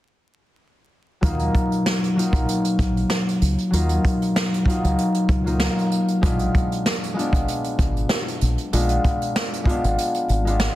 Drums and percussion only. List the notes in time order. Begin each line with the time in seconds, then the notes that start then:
1.23 kick, closed hi-hat
1.39 closed hi-hat
1.55 kick, closed hi-hat
1.72 closed hi-hat
1.86 snare
2.04 closed hi-hat
2.19 closed hi-hat
2.33 kick, closed hi-hat
2.48 closed hi-hat
2.64 closed hi-hat
2.79 kick, closed hi-hat
2.97 closed hi-hat
3.10 snare
3.28 closed hi-hat
3.41 closed hi-hat
3.58 closed hi-hat
3.73 closed hi-hat
3.89 closed hi-hat
4.05 kick, closed hi-hat
4.22 closed hi-hat
4.36 snare
4.54 closed hi-hat
4.66 kick, closed hi-hat
4.84 closed hi-hat
4.98 closed hi-hat
5.14 closed hi-hat
5.29 kick, closed hi-hat
5.47 closed hi-hat
5.60 snare
5.78 closed hi-hat
5.91 closed hi-hat
6.08 closed hi-hat
6.23 kick, closed hi-hat
6.39 closed hi-hat
6.55 kick, closed hi-hat
6.72 closed hi-hat
6.86 snare
7.03 closed hi-hat
7.19 closed hi-hat
7.33 kick, closed hi-hat
7.48 closed hi-hat
7.64 closed hi-hat
7.79 kick, closed hi-hat
7.96 closed hi-hat
8.09 snare
8.28 closed hi-hat
8.41 closed hi-hat
8.58 closed hi-hat
8.73 closed hi-hat
8.89 closed hi-hat
9.04 kick, closed hi-hat
9.22 closed hi-hat
9.36 snare
9.53 closed hi-hat
9.65 kick, closed hi-hat
9.84 closed hi-hat
9.98 closed hi-hat
10.14 closed hi-hat
10.29 closed hi-hat
10.47 closed hi-hat
10.60 snare